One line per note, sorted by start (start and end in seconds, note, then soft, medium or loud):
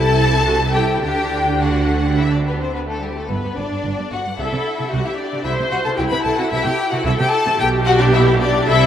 0.00 1.02 C2 medium
0.00 1.03 C3 medium
0.00 0.45 E4 medium
0.00 0.72 A4 loud
0.00 0.74 A5 loud
0.46 0.54 F#4 medium
0.73 1.01 E4 medium
0.73 1.01 G4 medium
0.73 1.01 G5 loud
1.01 3.10 D2 medium
1.01 3.10 D3 medium
1.01 2.98 D4 medium
1.01 1.59 G4 medium
1.01 1.59 G5 loud
1.61 2.17 F#4 medium
1.61 2.18 F#5 medium
2.16 2.22 E4 medium
2.16 2.32 E5 loud
2.30 2.45 D4 medium
2.30 2.38 D5 medium
2.44 2.59 B3 medium
2.44 2.53 B4 medium
2.59 2.74 C4 medium
2.59 2.75 C5 medium
2.73 2.79 B3 medium
2.73 2.81 B4 medium
2.86 3.01 A3 medium
2.91 3.03 A4 medium
3.00 3.15 G3 medium
3.00 3.17 G4 medium
3.15 3.29 A3 medium
3.15 3.31 A4 medium
3.28 3.36 G1 medium
3.28 3.36 G2 medium
3.28 3.56 B3 medium
3.28 3.58 B4 medium
3.44 3.50 G2 soft
3.56 3.64 G1 medium
3.56 3.63 G2 soft
3.56 4.11 D4 medium
3.56 4.12 D5 medium
3.71 3.77 G2 soft
3.85 3.91 G1 medium
3.85 3.90 G2 medium
3.99 4.04 G2 medium
4.11 4.17 G1 medium
4.11 4.18 G2 medium
4.11 4.19 F#4 medium
4.11 4.39 F#5 medium
4.26 4.31 G2 medium
4.38 4.44 C2 medium
4.38 4.44 C3 medium
4.38 4.91 E4 medium
4.38 4.89 A4 medium
4.38 4.92 E5 medium
4.53 4.58 C3 medium
4.80 4.85 C3 medium
4.92 4.98 C2 medium
4.92 4.98 C3 medium
4.92 5.05 F#4 medium
4.92 5.46 G4 medium
4.92 5.06 F#5 medium
5.05 5.11 C3 medium
5.05 5.11 E4 medium
5.05 5.19 E5 medium
5.18 5.45 D4 medium
5.18 5.45 D5 medium
5.34 5.39 C3 medium
5.45 5.50 C2 medium
5.45 5.51 C3 medium
5.45 5.72 E4 medium
5.45 5.98 C5 medium
5.45 5.53 E5 loud
5.60 5.65 C3 medium
5.71 5.78 C2 medium
5.71 5.78 C3 medium
5.71 5.85 F#4 medium
5.71 5.77 F#5 medium
5.84 5.91 C3 medium
5.84 5.90 A4 medium
5.84 5.90 A5 medium
5.97 6.04 C2 medium
5.97 6.04 C3 medium
5.97 7.06 E4 medium
5.97 6.04 G4 medium
5.97 6.03 G5 loud
6.09 6.17 C3 medium
6.09 6.17 B4 medium
6.09 6.24 B5 loud
6.23 6.30 C2 medium
6.23 6.30 C3 medium
6.23 6.38 A4 medium
6.23 6.37 A5 loud
6.37 6.44 C3 medium
6.37 6.44 F#4 medium
6.37 6.51 F#5 loud
6.51 6.57 C2 medium
6.51 6.58 C3 medium
6.51 6.65 E4 loud
6.51 6.65 E5 loud
6.63 6.71 C3 medium
6.63 6.92 G4 loud
6.63 6.91 G5 loud
6.91 6.98 C3 medium
6.91 7.06 F#4 medium
6.91 7.05 F#5 loud
7.05 7.11 C2 loud
7.05 7.11 C3 loud
7.05 7.19 E4 loud
7.05 7.58 A4 medium
7.05 7.11 E5 loud
7.19 7.25 C3 medium
7.19 7.33 G4 medium
7.19 7.32 G5 loud
7.32 7.60 A4 medium
7.32 7.59 A5 loud
7.46 7.52 C3 medium
7.59 8.63 B1 loud
7.59 8.63 B2 loud
7.59 8.67 G4 loud
7.59 7.68 G4 medium
7.59 7.68 G5 loud
7.85 8.00 F#4 loud
7.85 7.91 F#5 loud
7.99 8.13 D4 loud
7.99 8.05 D5 loud
8.13 8.40 E4 loud
8.13 8.21 E5 loud
8.41 8.67 D4 loud
8.41 8.67 D5 loud
8.66 8.86 C2 loud
8.66 8.86 C3 loud
8.66 8.86 E4 loud
8.66 8.86 A4 loud
8.66 8.86 E5 loud